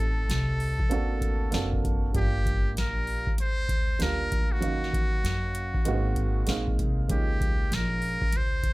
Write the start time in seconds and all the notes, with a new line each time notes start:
Already playing: A1 A3 C4 D#4 G4 A4
0.29 C2, snare, closed hi-hat
0.60 open hi-hat
0.79 kick
0.89 D2 A#3 C4 D4 F#4 A4, closed hi-hat
1.21 kick, closed hi-hat
1.51 F#1 A#3 C4 D4 F#4 A4, snare, closed hi-hat
1.73 kick
1.84 kick, closed hi-hat
2.13 G1 G3 A#3 D4 F4 G4, kick, closed hi-hat
2.46 kick, closed hi-hat
2.76 A#1 A#4, snare, closed hi-hat
3.07 open hi-hat
3.27 muted upright bass stroke, kick
3.38 D2 C5, closed hi-hat
3.69 kick, closed hi-hat
3.99 D2 G3 A#3 D4 F4 A#4, snare, closed hi-hat
4.32 kick, closed hi-hat
4.52 F#4
4.60 D#2 F#3 A#3 C#4 D#4 F5, closed hi-hat
4.84 snare
4.93 kick, closed hi-hat
5.24 F#2, snare, closed hi-hat
5.55 closed hi-hat
5.74 muted upright bass stroke, kick
5.85 G#1 G#3 A#3 B3 D#4 F#4, closed hi-hat
5.93 C4
6.16 kick, closed hi-hat
6.46 A#1 G#3 A#3 C4 D#4 F5, snare, closed hi-hat
6.68 kick
6.79 C2, kick, closed hi-hat
7.08 C#2 G#3 A#3 C#4 D#4 F4 G4, kick, closed hi-hat
7.41 kick, closed hi-hat
7.72 A#1 A#4, snare, closed hi-hat
8.02 open hi-hat
8.22 muted upright bass stroke, kick
8.33 C#2, closed hi-hat
8.37 C5
8.63 kick, closed hi-hat